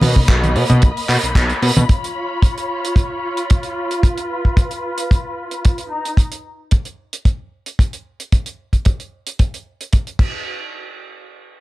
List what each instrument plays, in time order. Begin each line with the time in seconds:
Already playing: string section A#3 D#5 B5
0.01 analog synth bass B2, open hi-hat, high conga
0.16 analog synth bass B1, kick, low conga
0.28 analog synth bass B1, kick, clap, closed hi-hat
0.44 closed hi-hat, high conga
0.56 analog synth bass B2, open hi-hat
0.70 analog synth bass B2, closed hi-hat, low conga
0.82 analog synth bass B1, kick, closed hi-hat
0.97 open hi-hat
1.09 analog synth bass B2, clap, open hi-hat
1.23 analog synth bass B1, closed hi-hat
1.35 analog synth bass B1, kick, clap, closed hi-hat
1.50 closed hi-hat
1.62 analog synth bass B2, open hi-hat
1.77 analog synth bass B2, closed hi-hat, high conga
1.89 string section F4 C#5, kick, closed hi-hat
2.04 closed hi-hat
2.42 kick, closed hi-hat
2.58 closed hi-hat
2.85 closed hi-hat
2.96 kick, closed hi-hat
3.37 closed hi-hat
3.50 kick, closed hi-hat
3.63 closed hi-hat
3.91 closed hi-hat
4.03 string section B4, kick, closed hi-hat
4.18 closed hi-hat
4.45 kick
4.57 kick, closed hi-hat
4.71 closed hi-hat
4.98 closed hi-hat
5.11 kick, closed hi-hat
5.51 closed hi-hat
5.65 kick, closed hi-hat
5.78 closed hi-hat
5.91 string section D#4 A#5
6.05 closed hi-hat
6.17 kick, closed hi-hat
6.32 closed hi-hat
6.71 kick, closed hi-hat
6.85 closed hi-hat
7.13 closed hi-hat
7.25 kick, closed hi-hat
7.66 closed hi-hat
7.79 kick, closed hi-hat
7.93 closed hi-hat
8.20 closed hi-hat
8.32 kick, closed hi-hat
8.46 closed hi-hat
8.73 kick, closed hi-hat
8.85 kick, closed hi-hat
9.00 closed hi-hat
9.27 closed hi-hat
9.39 kick, closed hi-hat
9.54 closed hi-hat
9.81 closed hi-hat
9.93 kick, closed hi-hat
10.07 closed hi-hat
10.19 kick, crash